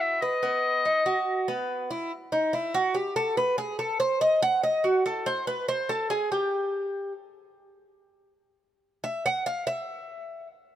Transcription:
0.00 0.20 E4 medium
0.00 0.23 E5 medium
0.22 0.42 B4 medium
0.22 1.69 D#5 loud
0.43 0.84 B3 medium
0.85 1.05 D#4 medium
1.06 1.47 F#4 medium
1.48 1.89 B3 medium
1.91 2.11 E4 medium
2.32 2.53 D#4 medium
2.53 2.74 E4 medium
2.74 2.95 F#4 medium
2.95 3.15 G4 medium
3.16 3.37 A4 medium
3.37 3.58 B4 medium
3.58 3.79 G#4 medium
3.79 3.99 A4 medium
4.00 4.21 C5 medium
4.21 4.42 D#5 medium
4.42 4.63 F#5 loud
4.63 4.84 D#5 medium
4.84 5.05 F#4 medium
5.06 5.26 A4 medium
5.26 5.47 C5 loud
5.47 5.68 B4 medium
5.68 5.89 C5 loud
5.89 6.10 A4 medium
6.10 6.31 G#4 medium
6.32 7.12 G4 medium
9.04 9.24 E5 medium
9.26 9.46 F#5 loud
9.46 9.66 F5 medium
9.67 10.47 E5 medium

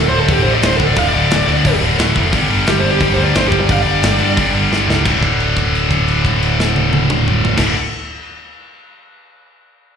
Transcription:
0.00 0.12 D2 medium
0.00 0.10 A2 medium
0.00 0.10 D3 medium
0.08 0.26 D1 medium
0.08 0.26 D2 medium
0.08 0.27 A2 medium
0.08 0.28 D3 medium
0.08 0.19 C5 medium
0.19 0.32 A4 medium
0.28 0.44 D1 loud
0.28 0.44 D2 loud
0.28 0.44 A2 medium
0.28 0.43 D3 loud
0.28 kick medium
0.28 open hi-hat medium
0.32 0.41 G4 medium
0.42 0.60 A1 medium
0.42 0.60 D2 medium
0.42 0.60 A2 medium
0.42 0.61 D3 medium
0.42 0.52 C5 medium
0.55 0.66 D5 medium
0.61 0.92 D1 medium
0.61 0.78 D2 medium
0.61 0.78 A2 medium
0.61 0.77 D3 loud
0.61 snare loud
0.61 open hi-hat medium
0.66 0.76 C5 medium
0.76 0.94 D2 medium
0.76 0.95 A2 medium
0.76 0.95 D3 medium
0.76 0.86 A4 medium
0.76 kick medium
0.87 0.98 D5 medium
0.95 1.12 D1 medium
0.95 1.12 D2 medium
0.95 1.12 A2 medium
0.95 1.11 D3 loud
0.95 1.09 F5 medium
0.95 kick loud
0.95 open hi-hat medium
1.09 1.29 D3 loud
1.09 1.74 D5 loud
1.13 1.29 D1 medium
1.13 1.28 D2 medium
1.13 1.28 A2 medium
1.29 1.46 D1 medium
1.29 1.47 D2 medium
1.29 1.46 A2 medium
1.29 1.46 D3 medium
1.29 snare loud
1.29 open hi-hat medium
1.47 1.63 D2 medium
1.47 1.62 D2 medium
1.47 1.63 A2 medium
1.47 1.63 D3 medium
1.63 1.80 D1 medium
1.63 1.80 D2 medium
1.63 1.79 A2 medium
1.63 1.79 D3 loud
1.63 kick medium
1.63 open hi-hat medium
1.80 1.96 D1 medium
1.80 1.96 D2 medium
1.80 1.96 A2 medium
1.80 1.97 D3 medium
1.97 2.14 D1 medium
1.97 2.15 D2 medium
1.97 2.14 A2 medium
1.97 2.14 D3 medium
1.97 snare loud
1.97 open hi-hat medium
2.15 2.31 F1 medium
2.15 2.31 D2 medium
2.15 2.31 A2 medium
2.15 2.31 D3 medium
2.15 kick medium
2.32 2.48 G1 medium
2.32 2.50 G2 medium
2.32 2.49 D3 medium
2.32 2.49 G3 medium
2.32 kick loud
2.32 open hi-hat medium
2.49 2.65 G1 medium
2.49 2.66 G2 medium
2.49 2.65 D3 medium
2.49 2.67 G3 medium
2.66 2.82 G1 medium
2.66 2.84 G2 medium
2.66 2.82 D3 medium
2.66 2.82 G3 medium
2.66 2.79 G4 loud
2.66 snare loud
2.66 open hi-hat medium
2.79 3.00 G3 medium
2.79 2.90 C5 medium
2.83 2.99 G1 medium
2.83 2.99 G2 medium
2.83 3.00 D3 medium
2.91 3.00 G4 medium
3.00 3.16 G1 medium
3.00 3.17 G2 medium
3.00 3.16 D3 loud
3.00 3.16 G3 medium
3.00 3.12 G4 medium
3.00 kick medium
3.00 open hi-hat medium
3.14 3.33 D2 medium
3.14 3.33 D3 medium
3.14 3.33 G3 medium
3.14 3.24 C5 medium
3.18 3.32 G2 medium
3.25 3.36 D5 medium
3.33 3.65 G1 medium
3.33 3.51 G2 medium
3.33 3.50 D3 medium
3.33 3.50 G3 medium
3.33 3.47 C5 loud
3.33 snare loud
3.33 open hi-hat medium
3.48 3.67 D3 medium
3.48 3.67 G3 medium
3.48 3.58 G4 loud
3.52 3.66 G2 medium
3.52 kick medium
3.60 3.71 D5 loud
3.68 3.84 G1 medium
3.68 3.84 G2 medium
3.68 3.84 D3 medium
3.68 3.83 G3 loud
3.68 3.82 F5 medium
3.68 kick loud
3.68 open hi-hat medium
3.82 4.01 G1 medium
3.82 4.01 G2 medium
3.82 4.01 D3 medium
3.82 4.02 G3 medium
3.82 4.47 D5 loud
4.02 4.18 G1 medium
4.02 4.19 G2 medium
4.02 4.18 D3 medium
4.02 4.17 G3 medium
4.02 snare loud
4.02 open hi-hat medium
4.19 4.35 G2 medium
4.19 4.36 D3 medium
4.19 4.36 G3 medium
4.36 4.52 G1 medium
4.36 4.53 G2 medium
4.36 4.53 D3 medium
4.36 4.52 G3 loud
4.36 kick medium
4.36 open hi-hat medium
4.53 4.69 G1 medium
4.53 4.69 G2 medium
4.53 4.70 D3 medium
4.53 4.70 G3 medium
4.70 4.86 G1 medium
4.70 4.88 G2 medium
4.70 4.87 D3 medium
4.70 4.86 G3 medium
4.70 snare medium
4.87 5.03 C#2 medium
4.87 5.03 G2 medium
4.87 5.04 D3 medium
4.87 5.04 G3 medium
4.87 snare medium
5.03 7.50 D1 medium
5.03 7.55 D2 medium
5.03 7.57 A2 medium
5.03 7.59 D3 medium
5.03 kick loud
5.03 crash medium
5.23 kick medium
5.23 crash soft
5.40 crash soft
5.57 kick medium
5.57 crash soft
5.75 crash soft
5.91 kick medium
5.91 crash soft
6.08 crash soft
6.25 kick medium
6.25 crash soft
6.42 crash medium
6.60 snare medium
6.76 high tom medium
6.93 high tom loud
7.10 mid tom loud
7.28 mid tom medium
7.45 floor tom medium
7.56 7.72 D1 medium
7.56 7.72 D2 medium
7.56 7.73 A2 loud
7.56 7.74 D3 loud
7.56 kick medium
7.56 snare medium
7.56 crash loud

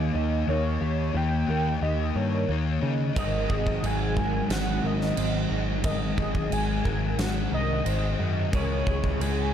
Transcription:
0.00 0.46 D#3 medium
0.00 3.15 D#3 medium
0.00 0.16 A#3 medium
0.00 3.17 A#3 medium
0.00 3.17 C#4 medium
0.00 0.14 D#4 medium
0.00 3.18 G4 medium
0.00 0.48 A#4 loud
0.00 0.14 C#5 medium
0.00 0.16 D#5 medium
0.14 0.43 D#2 medium
0.14 0.47 A#3 medium
0.14 0.50 D#4 medium
0.14 2.49 D#5 medium
0.47 0.77 D#2 loud
0.47 1.13 D#3 medium
0.47 1.14 A#3 medium
0.47 1.16 D#4 loud
0.47 0.82 A#4 medium
0.47 1.18 C#5 loud
0.81 1.10 D#2 medium
0.81 1.15 G4 medium
1.14 1.43 D#2 medium
1.14 1.79 D#3 medium
1.14 1.50 A#3 medium
1.14 1.47 D#4 medium
1.14 1.49 G4 medium
1.14 1.84 G5 loud
1.47 1.77 D#2 medium
1.47 1.81 A#3 medium
1.47 1.83 D#4 medium
1.47 1.82 A#4 medium
1.80 2.10 D#2 medium
1.80 2.47 D#3 medium
1.80 2.49 A#3 medium
1.80 2.51 D#4 medium
1.80 2.16 G4 medium
1.80 2.17 D#5 loud
2.15 2.44 G2 medium
2.15 2.49 A#4 medium
2.15 2.83 C#5 medium
2.48 2.77 D#2 medium
2.48 3.14 D#3 medium
2.48 2.83 A#3 medium
2.48 2.81 D#4 medium
2.48 2.82 C#5 medium
2.81 3.11 C#3 medium
2.81 3.15 A#3 medium
2.81 6.31 D#4 medium
2.81 5.51 D#5 medium
3.15 3.45 G#1 medium
3.15 3.82 G#2 medium
3.15 8.52 G#2 medium
3.15 3.83 D#3 medium
3.15 8.52 D#3 medium
3.15 8.53 F#3 medium
3.15 3.85 G#3 medium
3.15 8.53 C4 medium
3.15 8.54 D#4 medium
3.15 8.54 G#4 medium
3.15 3.49 A#4 medium
3.15 3.87 D#5 loud
3.15 kick loud
3.15 crash medium
3.49 3.78 G#1 medium
3.49 3.83 G#4 medium
3.49 kick medium
3.67 kick medium
3.82 4.40 G#1 medium
3.82 4.50 G#2 medium
3.82 4.18 D#3 medium
3.82 4.16 G#3 medium
3.82 4.17 G#4 medium
3.82 4.54 G#5 loud
3.82 crash medium
4.16 4.50 D#3 medium
4.16 4.52 G#3 medium
4.16 4.50 A#4 medium
4.16 kick medium
4.50 4.78 G#1 medium
4.50 5.15 G#2 medium
4.50 5.17 D#3 medium
4.50 5.19 G#3 medium
4.50 4.83 F#4 loud
4.50 4.88 F#5 loud
4.50 snare loud
4.50 crash medium
4.83 5.12 G#1 loud
4.83 5.17 A#4 medium
4.83 5.52 D#5 loud
5.01 snare soft
5.16 5.45 G#1 medium
5.16 5.82 G#2 medium
5.16 5.51 D#3 medium
5.16 5.49 G#3 medium
5.16 5.51 C5 medium
5.16 crash medium
5.49 5.79 G#1 medium
5.49 5.84 D#3 medium
5.49 5.86 G#3 medium
5.49 5.83 D#5 medium
5.83 6.13 G#1 medium
5.83 6.49 G#2 medium
5.83 6.50 D#3 medium
5.83 6.52 G#3 loud
5.83 6.17 A#4 loud
5.83 6.54 D#5 loud
5.83 kick loud
5.83 crash medium
6.17 6.46 G#1 medium
6.17 6.52 G#4 medium
6.17 kick medium
6.35 kick medium
6.50 6.80 G#1 medium
6.50 7.16 G#2 medium
6.50 6.87 D#3 medium
6.50 6.84 G#3 medium
6.50 6.88 G#4 medium
6.50 7.20 G#5 loud
6.50 crash medium
6.85 7.14 G#1 medium
6.85 7.18 D#3 medium
6.85 7.20 G#3 medium
6.85 7.19 A#4 medium
6.85 kick medium
7.17 7.47 G#1 medium
7.17 7.83 G#2 medium
7.17 7.85 D#3 medium
7.17 7.87 G#3 medium
7.17 7.52 F#4 medium
7.17 7.52 F#5 loud
7.17 snare loud
7.17 crash medium
7.52 7.80 C2 medium
7.52 7.85 A#4 medium
7.52 8.16 D#5 medium
7.85 8.14 G#1 medium
7.85 8.50 G#2 medium
7.85 8.19 D#3 medium
7.85 8.17 G#3 medium
7.85 8.18 C5 medium
7.85 crash medium
8.17 8.48 F#2 medium
8.17 8.51 D#3 medium
8.17 8.53 G#3 medium
8.17 8.52 D#5 medium
8.52 8.82 C#2 loud
8.52 9.19 C#3 medium
8.52 9.54 C#3 medium
8.52 9.54 G#3 medium
8.52 9.20 G#3 loud
8.52 9.54 C#4 medium
8.52 9.21 C#4 loud
8.52 9.54 E4 medium
8.52 9.54 G#4 medium
8.52 8.85 A#4 loud
8.52 9.23 C#5 loud
8.52 kick loud
8.52 crash medium
8.86 9.15 C#2 medium
8.86 9.20 G#4 medium
8.86 kick medium
9.04 kick medium
9.19 9.54 C#2 medium
9.19 9.54 C#3 medium
9.19 9.54 G#3 loud
9.19 9.51 C#4 medium
9.19 9.54 G#4 medium
9.19 9.54 G#5 loud
9.19 crash medium

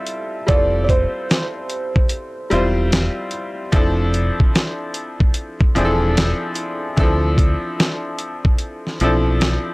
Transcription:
0.00 0.36 G3 medium
0.00 0.36 C4 medium
0.00 0.37 E4 medium
0.00 0.37 F4 medium
0.00 0.38 A4 medium
0.00 0.53 E5 loud
0.07 closed hi-hat medium
0.47 1.05 F1 medium
0.47 1.93 G3 medium
0.47 1.93 C4 medium
0.47 1.93 E4 medium
0.47 1.94 F4 medium
0.47 1.94 A4 medium
0.47 0.83 D5 loud
0.47 kick loud
0.47 closed hi-hat medium
0.84 0.89 D5 medium
0.89 3.29 C5 medium
0.89 kick medium
0.89 closed hi-hat medium
1.31 snare loud
1.31 closed hi-hat medium
1.70 closed hi-hat medium
1.96 kick medium
2.09 closed hi-hat medium
2.50 3.08 E1 medium
2.50 3.60 G3 loud
2.50 3.61 C4 medium
2.50 3.61 E4 medium
2.50 3.62 F4 medium
2.50 3.62 C5 medium
2.50 closed hi-hat soft
2.92 snare loud
2.92 closed hi-hat medium
3.31 closed hi-hat medium
3.72 4.29 F1 loud
3.72 5.17 F3 medium
3.72 5.18 C4 medium
3.72 5.18 D4 medium
3.72 5.19 E4 medium
3.72 5.19 A4 loud
3.72 kick loud
3.72 closed hi-hat medium
4.14 closed hi-hat medium
4.40 kick medium
4.55 snare loud
4.55 closed hi-hat medium
4.94 closed hi-hat medium
5.20 kick medium
5.34 closed hi-hat medium
5.61 kick loud
5.75 6.32 E1 medium
5.75 6.85 F3 medium
5.75 6.85 C4 medium
5.75 6.86 D4 medium
5.75 6.86 E4 medium
5.75 5.85 G#4 medium
5.75 closed hi-hat soft
5.85 6.90 A4 loud
6.17 snare loud
6.17 closed hi-hat medium
6.55 closed hi-hat medium
6.97 7.54 D2 loud
6.97 7.05 E3 medium
6.97 8.42 C4 medium
6.97 8.43 D4 medium
6.97 8.43 E4 medium
6.97 8.43 A4 loud
6.97 kick loud
6.97 closed hi-hat medium
7.03 8.45 F3 medium
7.38 kick medium
7.38 closed hi-hat medium
7.80 snare loud
7.80 closed hi-hat medium
8.19 closed hi-hat medium
8.45 kick loud
8.59 closed hi-hat medium
8.87 snare soft
9.00 9.56 B1 medium
9.00 9.74 F3 medium
9.00 9.74 C4 medium
9.00 9.74 D4 medium
9.00 9.74 E4 medium
9.00 closed hi-hat soft
9.04 9.74 A4 medium
9.41 snare loud
9.41 closed hi-hat medium

